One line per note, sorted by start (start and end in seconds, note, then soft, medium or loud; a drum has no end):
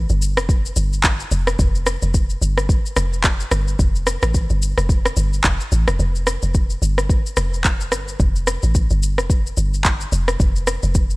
0.09 0.39 G1 medium
0.09 shaker soft
0.22 shaker medium
0.37 0.72 F1 medium
0.37 cross-stick medium
0.37 shaker soft
0.49 kick loud
0.49 shaker medium
0.66 shaker medium
0.76 1.25 G1 medium
0.76 shaker loud
0.93 shaker soft
1.04 kick medium
1.04 clap loud
1.04 shaker medium
1.20 shaker medium
1.31 1.56 F1 loud
1.31 shaker medium
1.47 cross-stick loud
1.47 shaker medium
1.59 1.97 F1 loud
1.59 kick loud
1.59 shaker medium
1.75 shaker soft
1.86 cross-stick loud
1.86 shaker medium
2.02 2.37 F1 loud
2.02 shaker medium
2.14 kick medium
2.14 shaker medium
2.30 shaker soft
2.42 2.80 G1 medium
2.42 shaker medium
2.58 cross-stick medium
2.58 shaker soft
2.69 kick loud
2.69 shaker medium
2.86 shaker medium
2.96 3.45 F1 medium
2.96 cross-stick loud
2.96 shaker medium
3.13 shaker soft
3.24 kick medium
3.24 clap loud
3.24 shaker medium
3.40 shaker medium
3.51 3.76 G1 loud
3.51 cross-stick loud
3.51 shaker medium
3.68 shaker medium
3.79 4.17 F1 loud
3.79 kick loud
3.79 shaker medium
3.95 shaker soft
4.07 cross-stick loud
4.07 shaker medium
4.22 4.47 A1 medium
4.22 cross-stick loud
4.22 shaker medium
4.34 kick medium
4.34 shaker medium
4.50 4.74 G1 medium
4.50 shaker soft
4.62 shaker medium
4.78 5.12 F1 medium
4.78 cross-stick medium
4.78 shaker medium
4.89 kick loud
4.89 shaker medium
5.05 cross-stick loud
5.05 shaker medium
5.17 5.41 G1 medium
5.17 shaker medium
5.33 shaker soft
5.44 5.58 F1 medium
5.44 kick medium
5.44 clap loud
5.44 shaker medium
5.60 shaker medium
5.72 5.86 A1 loud
5.72 shaker medium
5.88 5.98 F1 medium
5.88 cross-stick loud
5.88 shaker medium
5.99 6.38 F1 loud
5.99 shaker medium
6.15 shaker soft
6.27 cross-stick loud
6.27 shaker medium
6.42 6.77 F1 medium
6.42 shaker medium
6.54 kick medium
6.54 shaker medium
6.70 shaker soft
6.82 7.20 G1 medium
6.82 shaker medium
6.98 cross-stick medium
6.98 shaker soft
7.09 kick loud
7.09 shaker medium
7.26 shaker medium
7.37 7.94 F1 medium
7.37 cross-stick loud
7.37 shaker loud
7.54 shaker medium
7.64 kick medium
7.64 clap medium
7.64 shaker medium
7.81 shaker medium
7.92 8.16 G1 loud
7.92 cross-stick medium
7.92 shaker medium
8.08 shaker medium
8.20 8.58 F1 loud
8.20 kick loud
8.20 shaker medium
8.36 shaker soft
8.47 cross-stick loud
8.47 shaker medium
8.63 8.87 A1 medium
8.63 shaker medium
8.75 kick medium
8.75 shaker medium
8.90 9.20 G1 medium
8.90 shaker medium
9.03 shaker medium
9.18 9.52 F1 medium
9.18 cross-stick medium
9.18 shaker medium
9.30 kick loud
9.30 shaker medium
9.47 shaker medium
9.57 10.06 G1 medium
9.57 shaker medium
9.74 shaker soft
9.84 kick medium
9.84 clap medium
9.84 shaker medium
10.01 shaker medium
10.12 10.36 F1 loud
10.12 shaker medium
10.28 cross-stick loud
10.28 shaker medium
10.40 10.78 F1 loud
10.40 kick loud
10.40 shaker medium
10.56 shaker soft
10.67 cross-stick loud
10.67 shaker medium
10.83 11.16 F1 loud
10.83 shaker medium
10.95 kick medium
10.95 shaker medium
11.10 shaker medium